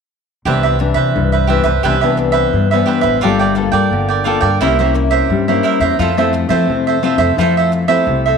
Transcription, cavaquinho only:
0.45 G4 B4 C5 E5
0.63 B4 C5 E5
0.79 muted cavaquinho stroke
0.94 B4 C5 E5
1.32 B4 C5 E5
1.47 G4 B4 C5 E5
1.64 B4 C5 E5
1.83 G4 B4 C5 E5
2.01 B4 C5 E5
2.17 muted cavaquinho stroke
2.32 B4 C5 E5
2.71 B4 C5 E5
2.86 G4 B4 C5 E5
3.01 B4 C5 E5
3.21 F4 A#4 D5 G5
3.39 A#4 D5 G5
3.55 muted cavaquinho stroke
3.72 A#4 D5 G5
4.09 A#4 D5 G5
4.24 F4 A#4 D5 G5
4.41 A#4 D5 G5
4.61 E4 A#4 C5 E5
4.79 A#4 C5 E5
4.94 muted cavaquinho stroke
5.11 A#4 C5 E5
5.48 A#4 C5 E5
5.63 E4 A#4 C5 E5
5.80 A#4 C5 E5
5.99 F4 A4 C5 E5
6.18 A4 C5 E5
6.33 muted cavaquinho stroke
6.49 A4 C5 E5
6.87 A4 C5 E5
7.03 F4 A4 C5 E5
7.18 A4 C5 E5
7.39 F4 A4 C5 E5
7.57 A4 C5 E5
7.72 muted cavaquinho stroke
7.88 A4 C5 E5
8.26 A4 C5 E5

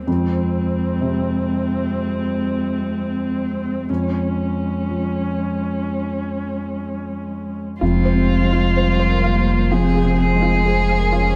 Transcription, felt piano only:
0.07 F2
1.01 C3
3.89 F2
4.89 F3
7.82 F2
8.15 C3
8.44 G#3
8.76 C5
9.09 A#4
9.40 C5
9.72 F2
10.05 C3
10.35 G#3
10.67 C5
10.98 A#4
11.29 C5

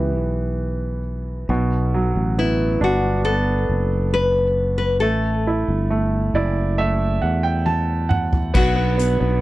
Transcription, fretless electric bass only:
Already playing: C#2
0.16 B1
1.49 B1
2.15 A1
2.81 G1
3.69 F#1
5.02 A1
5.68 G1
6.34 F#1
7.23 E2
8.55 B1
9.21 B1

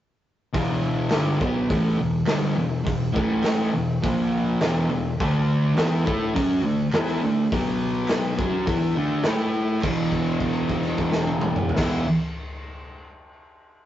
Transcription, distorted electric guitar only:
0.53 E2 B2 E3
1.11 G2 D3 G3
1.40 B2 F#3 B3
1.69 A2 E3 A3
1.97 E2 B2
2.26 G2 D3 G3
2.56 E2 B2
2.85 E2 B2
3.13 A2 E3 A3
3.74 E2 B2
4.03 A#2 F3 A#3
4.61 E2 B2 E3
4.90 E2 B2
5.20 D3 A3 D4
5.76 E3 B3 E4
6.05 A3 E4 A4
6.34 F#3 C#4 F#4
6.63 D3 A3
6.93 E3 B3 E4
7.23 D3 A3
7.52 B2 F#3 B3
8.39 F#3 C#4 F#4
8.67 E3 B3 E4
8.96 D3 A3 D4
9.24 A3 E4 A4
9.82 E2 B2
9.86 E3
11.77 E2 B2 E3

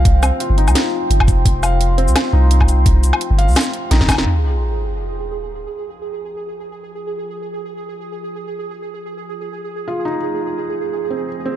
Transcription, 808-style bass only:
Already playing: C2
0.50 G1
0.68 C2
1.10 G1
1.28 F1
1.45 F1
2.08 C2
2.33 C2
3.31 G1
3.48 C2
3.91 A#1
4.09 F1

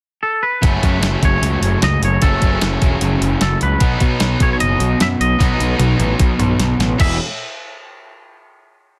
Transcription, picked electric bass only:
0.63 F#1
0.83 F#2
1.01 F#1
1.22 F#1
1.42 C#2
1.62 F#1
1.83 C#2
2.02 F#1
2.22 F#1
2.42 F#1
2.62 F#1
2.82 E1
3.02 F#1
3.21 F#1
3.41 F#1
3.62 C#2
3.81 B1
4.01 B2
4.21 B1
4.40 B1
4.62 F#1
4.80 B1
5.01 F#2
5.20 B1
5.40 B1
5.60 B1
5.79 B1
5.99 A1
6.20 B1
6.39 B1
6.59 B1
6.79 A1
7.00 E1

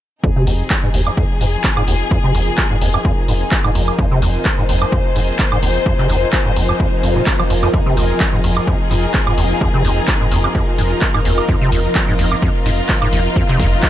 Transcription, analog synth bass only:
0.47 F1
0.94 F1
1.41 F1
1.88 F1
2.35 F1
2.82 F1
3.28 F1
3.75 F1
4.22 F1
4.69 F1
5.16 F1
5.63 F1
6.10 F1
6.56 F1
7.03 F1
7.50 F1
7.97 F1
8.44 F1
8.91 F1
9.38 F1
9.85 F1
10.32 F1
10.78 F1
11.25 F1
11.72 F1
12.19 F1
12.66 F1
13.13 F1
13.60 F1

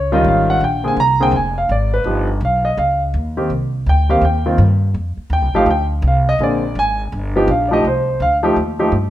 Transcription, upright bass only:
Already playing: C#2
0.24 G#1
0.60 A#1
0.96 C2
1.32 F1
1.69 G#1
2.04 G1
2.41 B1
2.77 C#2
3.14 D#2
3.50 C2
3.86 D2
4.21 D#2
4.58 G2
4.94 F2
5.17 muted upright bass stroke
5.30 D#2
5.42 C2
5.54 A1
5.66 D2
6.02 C2
6.39 A#1
6.75 G#1
7.12 G1
7.48 A#1
7.84 C2
8.20 D2
8.56 D#2
8.92 G2

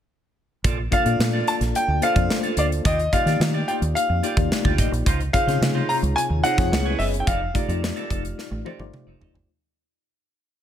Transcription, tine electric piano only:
0.91 A#3 D4 F4 A4 D5
1.05 A#3 D4 F4 A4 D5
2.01 A#3 D4 F4 A4 C5
2.16 A#3 D4 F4 A4 D5
3.13 A#3 D#4 F4 G4 D5
3.26 A#3 D#4 F4 G4 D5
4.22 A#3 D#4 F4 G4 D5
4.36 A#3 D#4 F4 G4 D5
5.33 C4 D#4 F4 G#4 C#5
5.47 C3 D#4 F4 G#4 C#5
6.43 C4 D#4 F4 G#4 C#5
6.58 C4 D#4 F4 G#4 C#5
6.71 B3 C#4 E4 G#4 C#5
7.54 A3 D#4 F4 G4 D5
7.68 A3 D#4 F4 G4 D5
8.65 A3 D#4 F4 G4 C5
8.79 A3 D#4 F4 G4 D5

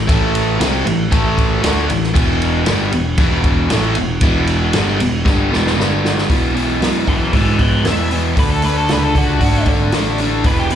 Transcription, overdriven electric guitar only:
0.07 A2 E3 A3
0.60 C3 G3 C4
0.85 A2 E3
1.11 A2 E3 A3
1.63 D3 A3 D4
1.88 A2 E3
2.14 E2 B2 E3
2.66 G2 D3 G3
2.92 E2 B2
3.18 E2 B2 E3
3.70 A2 E3 A3
3.97 E2 B2
4.22 E2 B2 E3
4.75 G2 D3 G3
5.01 E2 B2
5.25 G2 D3 G3
5.51 E2 B2 E3
5.77 G2 D3 G3
6.30 E2 B2 E3
6.54 E2 B2 E3
6.81 E2 B2 E3
7.07 E2 B2 E3
7.33 E2 B2 E3
7.58 E2 B2 E3
7.84 E2 B2 E3
8.11 E2 B2 E3
8.36 D3 A3 D4
8.64 D3 A3 D4
8.90 D3 A3 D4
9.16 D3 A3 D4
9.41 D3 A3 D4
9.67 D3 A3 D4
9.92 D3 A3 D4
10.19 D3 A3 D4
10.44 E2 B2 E3
10.71 E2 B2 E3

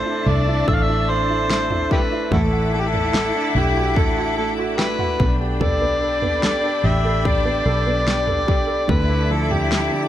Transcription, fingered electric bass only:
0.26 C2
0.68 A1
2.32 A1
3.55 B1
3.96 A1
5.20 B1
6.84 A1
7.66 B1
8.89 D2

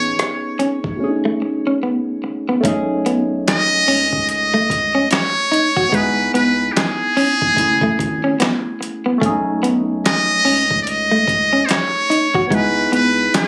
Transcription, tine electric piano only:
Already playing: B3 C#4 D#4 G#4
0.97 B2 A3 C#4
1.02 D4 G#4
1.08 D#4
2.60 A3 C#4
2.65 D#4 G#4
5.89 B3 D#4
5.94 E4 G#4
7.54 A3 C#4
7.58 E4 G#4
9.18 A3 C#4
9.23 D4 G#4
9.30 D#4
12.47 B3 D#4
12.52 E4 G#4

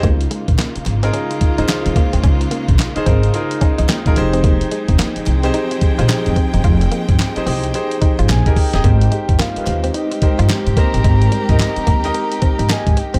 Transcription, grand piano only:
1.03 D#4 F4 G#4 A#4
1.58 D#4 F4 G#4 C5
2.96 D#4 F4 G#4 C5
3.06 D#4 F4 G#4 A#4
3.34 D#4 F4 G#4 A#4
3.62 D#5
3.90 G5
4.06 D#4 F4 G#4 A#4
4.17 D#4 G4 G#4 C5
5.44 D#4 G4 G#4 C5
5.99 D#4 G4 G#4 C5
7.36 D#4 G4 G#4 C5
7.47 D#4 G4 G#4 D#5
7.74 D#4 G4 G#4 C5
8.46 D#4 G4 G#4 A#4
8.74 D#4 G4 G#4 D#5
8.84 D#4 G4 A#4 C5
9.56 D#4 G4 A#4 B4
9.64 C5
10.22 D#4 G4 A#4 C5
10.77 D#4 G4 A#4 C5
11.49 D#4 G4 A#4 D#5
12.04 D#4 G4 A#4 D#5
12.69 D#4 G4 A#4 D#5

